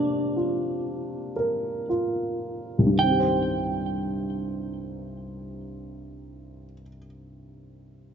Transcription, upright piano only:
Already playing: C3 A#3 D4
0.36 F4
1.36 A#4
1.89 F4
2.78 C2
2.86 G2
2.95 D#3
3.03 C4
3.11 G4
3.20 C5

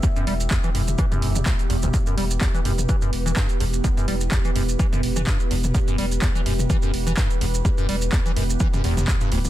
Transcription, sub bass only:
0.27 E1
0.75 E1
1.22 E1
1.70 E1
2.18 E1
2.65 E1
3.13 E1
3.60 E1
4.08 E1
4.56 E1
5.03 E1
5.51 E1
5.98 E1
6.46 E1
6.94 E1
7.41 E1
7.89 E1
8.36 E1
8.84 E1
9.32 D1

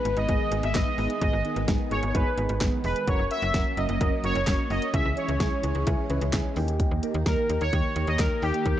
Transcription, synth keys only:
0.05 B3 D#4 B4
0.29 B3 D#4 G#4
0.52 B3 D#4 G#4
0.75 B3 D#4 B4
0.98 B3 D#4 G#4
1.21 B3 D#4 G#4
1.45 B3 D#4 G#4
1.68 B3 D#4 G#4
1.91 B3 D#4 G#4
2.14 B3 D#4 G#4
2.38 B3 D#4 G#4
2.61 B3 D#4 G#4
2.84 B3 D#4 G#4
3.08 C#4 F#4 A#4
3.31 C#4 F#4 A#4
3.54 C#4 F#4 A#4
3.77 C#4 F#4 A#4
4.00 C#4 F#4 A#4
4.24 C#4 F#4 A#4
4.47 C#4 F#4 A#4
4.71 C#4 F#4 A#4
4.94 C#4 E4 G#4
5.17 C#4 E4 G#4
5.40 C#4 E4 G#4
5.63 C#4 E4 G#4
5.87 C#4 E4 G#4
6.10 C#4 E4 B4
6.33 C#4 E4 G#4
6.57 A#3 D#4 G4
7.03 A#3 D#4 G4
7.26 A#3 D#4 G4
7.50 A#3 D#4 G4
7.73 A#3 D#4 G4
7.96 A#3 D#4 G4
8.19 A#3 D#4
8.43 A#3 D#4 G4
8.66 A#3 D#4 A#4

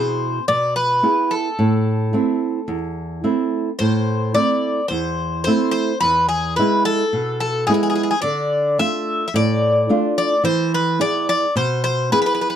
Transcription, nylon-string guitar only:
Already playing: B2 E4 G#4
0.49 B2
1.03 B3 E4 G#4
1.59 A2
2.13 A3 C4 E4
2.68 E2
3.24 A3 C4 E4
3.80 A2
4.34 A3 C4 E4
4.90 E2
5.47 A3 C4 E4
6.02 E2
6.59 G#3 B3 E4
7.13 B2
7.68 G#3 B3 E4
8.23 D3
8.78 A3 D4 F4
9.34 A2
9.89 A3 D4 F4
10.44 E3
10.99 B3 E4 G#4
11.56 B2
12.12 B3 E4 G#4

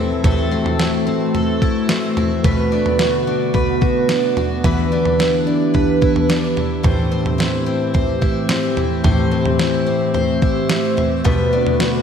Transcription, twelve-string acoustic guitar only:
Already playing: A2 C4 E4 A4
0.24 A2 A4
0.51 C4
0.79 E4
1.07 C4
1.35 A4
1.62 E4
1.89 C4
2.17 E4
2.44 B2 B4
2.72 D4
3.00 F#4
3.27 D4
3.54 B4
3.81 F#4
4.09 D4
4.37 F#4
4.64 E3 B4
4.92 D4
5.19 E4
5.47 D4
5.74 B4
6.01 E4
6.29 D4
6.57 E4
6.83 A2 C5
7.12 C4
7.38 E4
7.66 C4
7.94 C5
8.22 E4
8.49 C4
8.77 E4
9.04 A2 C5
9.31 C4
9.59 E4
9.86 C4
10.14 C5
10.42 E4
10.70 C4
10.97 E4
11.24 B2 B4
11.53 D4
11.80 F#4

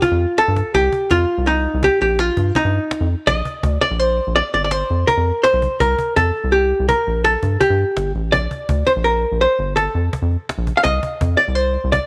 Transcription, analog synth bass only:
0.11 F2
0.48 G2
0.75 C2
1.11 F2
1.38 C2
1.74 C2
2.01 A#1
2.37 G2
2.65 G2
3.01 F2
3.27 A#1
3.63 D2
3.91 A#1
4.27 A#1
4.54 G1
4.90 F2
5.17 F2
5.53 B1
5.80 C2
6.17 F2
6.44 C2
6.80 C2
7.07 A#1
7.43 G2
7.70 G2
7.97 G1
8.15 A1
8.33 A#1
8.69 D2
8.96 A#1
9.32 A#1
9.59 G1
9.95 F2
10.22 F2
10.58 A#1
10.85 C2
11.21 F2
11.48 C2
11.84 C2

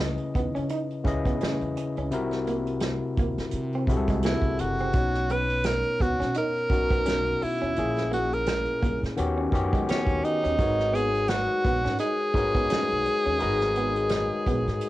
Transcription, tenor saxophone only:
4.25 E4
4.60 F#4
5.31 B4
5.66 A#4
6.02 F#4
6.38 A#4
7.43 E4
8.14 F#4
8.34 A#4
9.90 C#4
10.24 D#4
10.95 G#4
11.29 F#4
12.00 G#4

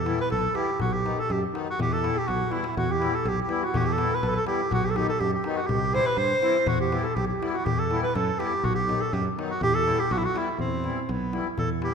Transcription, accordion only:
0.04 E3 G3 B3 E4
0.54 E3 G3 B3 E4
1.02 D#3 F#3 B3 D#4
1.51 D#3 F#3 B3 D#4
1.99 E3 G3 B3 E4
2.48 E3 G3 B3 E4
2.97 E3 G3 B3 E4
3.47 E3 G3 B3 E4
3.96 E3 G3 B3 E4
4.44 E3 G3 B3 E4
4.93 D#3 F#3 B3 D#4
5.43 D#3 F#3 B3 D#4
5.91 E3 G3 C4 E4
6.41 E3 G3 C4 E4
6.90 E3 G3 B3 E4
7.40 E3 G3 B3 E4
7.89 E3 G3 B3 E4
8.37 E3 G3 B3 E4
8.86 D#3 F#3 B3 D#4
9.35 D#3 F#3 B3 D#4
9.84 E3 G3 B3 E4
10.32 E3 G3 B3 E4
10.82 E3 G3 B3 E4
11.31 E3 G3 B3 E4
11.80 E3 G3 B3 E4

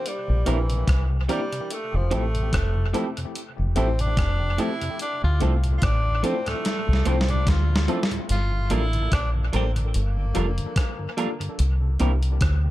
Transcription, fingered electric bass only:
0.29 A#1
0.48 A#1
0.88 C2
1.94 F1
2.13 A1
2.53 F1
3.59 F1
3.78 A1
4.18 F1
5.24 D2
5.42 C2
5.83 A1
6.88 C2
7.07 C2
7.47 D2
8.30 G1
8.71 A1
9.12 A#1
9.54 A1
9.95 G1
10.36 F1
11.60 C2
12.01 C2
12.42 D2

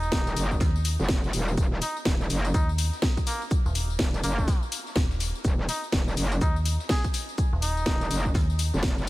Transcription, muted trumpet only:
Already playing: D#4
1.82 D#4
2.54 D#4
3.27 A#3
4.24 A#3
5.69 D#4
6.41 D#4
6.90 G#4
7.62 D#4

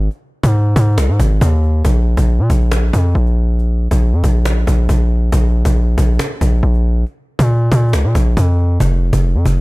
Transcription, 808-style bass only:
0.43 G#2
0.76 G#2
0.98 C2
1.09 G#2
1.19 G#1
1.41 D#2
1.85 A#1
2.17 A#1
2.39 A#2
2.50 A#1
2.93 F2
3.15 A#1
3.91 A#1
4.13 F2
4.24 A#1
4.67 A#1
4.89 A#1
5.32 A#1
5.65 A#1
5.98 A#1
6.41 A#1
6.63 A#1
7.39 A#2
7.72 A#2
7.93 C#2
8.04 A#2
8.15 A#1
8.37 F2
8.80 F1
9.13 F1
9.35 F2
9.45 F1

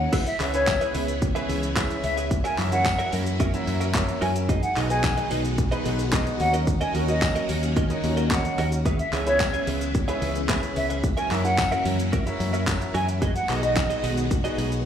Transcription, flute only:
0.27 E5
0.54 C#5
2.04 E5
2.45 G#5
2.72 F#5
4.22 G#5
4.63 F#5
4.90 G#5
6.40 F#5
6.81 G#5
7.08 D#5
8.31 F#5
8.99 E5
9.26 C#5
10.76 E5
11.17 G#5
11.44 F#5
12.95 G#5
13.35 F#5
13.63 D#5

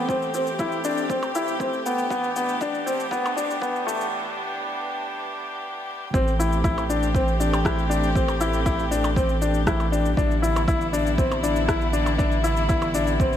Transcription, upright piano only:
0.09 C4
0.34 C4
0.60 E4
0.85 D4
1.10 C4
1.35 E4
1.60 C4
1.86 B3
2.11 B3
2.36 B3
2.62 D4
2.86 C4
3.12 B3
3.37 D4
3.62 B3
3.87 A3
6.14 C4
6.39 E4
6.64 E4
6.90 D4
7.15 C4
7.40 D4
7.65 E4
7.90 D4
8.15 C4
8.41 E4
8.66 E4
8.91 D4
9.17 C4
9.42 D4
9.67 E4
9.92 D4
10.17 D4
10.42 E4
10.68 E4
10.93 D4
11.18 C4
11.43 D4
11.68 E4
11.93 D4
12.18 D4
12.44 E4
12.69 E4
12.95 D4
13.20 C4

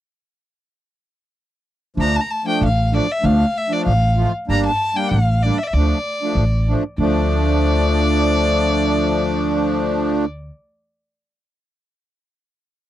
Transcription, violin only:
2.01 A#5
2.16 A5
2.21 A#5
2.31 A5
2.48 G5
2.65 F5
2.96 D5
3.11 E5
3.25 F5
3.57 E5
3.73 D5
3.85 F5
4.51 A#5
4.66 A5
4.96 G5
5.10 F5
5.43 D5
5.58 E5
5.63 D5 E5
5.73 D5
7.00 D5

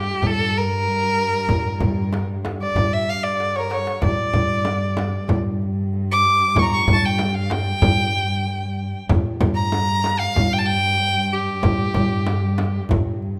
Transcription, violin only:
Already playing: G4
0.27 A4
0.57 A#4
2.62 D5
2.93 E5
3.09 F5
3.23 D5
3.56 A#4 C#5
3.70 C#5
4.04 D5
6.11 D6
6.59 A#5 C#6
6.73 C#6
6.93 A5
7.05 G5
7.29 G5
7.34 F5
7.52 G5
9.55 A#5
10.19 F5
10.53 G5
10.59 A5
10.66 G5
11.32 G4

